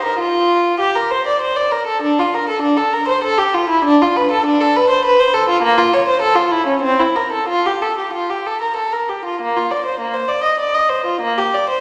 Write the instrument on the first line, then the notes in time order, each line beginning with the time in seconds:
violin
0.05 A#4
0.19 F4
0.80 G4
0.95 A#4
1.10 C5
1.27 D5
1.41 C5
1.56 D5
1.71 A#4
1.87 A4
2.02 D4
2.19 F4
2.34 A#4
2.49 A4
2.62 D4
2.77 A4
2.93 A#4
3.08 C5
3.24 A4
3.38 G4
3.54 F4
3.69 E4
3.84 D4
4.01 F4
4.16 B4
4.31 A4
4.46 D4
4.61 A4
4.76 B4
4.90 C5
5.05 B4
5.20 C5
5.33 A4
5.49 F4
5.62 A#3
5.78 F4
5.93 C#5
6.08 C5
6.21 A4
6.35 F4
6.51 E4
6.66 C#4
6.81 C4
6.99 E4
7.16 A#4
7.32 A4
7.48 F4
7.66 G4
7.82 A4
7.98 G4
8.13 F4
8.29 G4
8.47 A4
8.61 A#4
8.76 A4
8.92 A#4
9.09 G4
9.25 F4
9.41 A#3
9.57 F4
9.71 D5
9.86 C5
10.00 A#3
10.14 C5
10.28 D5
10.43 D#5
10.59 D5
10.74 D#5
10.89 C5
11.06 F4
11.21 A#3
11.38 G4
11.54 D5
11.70 C5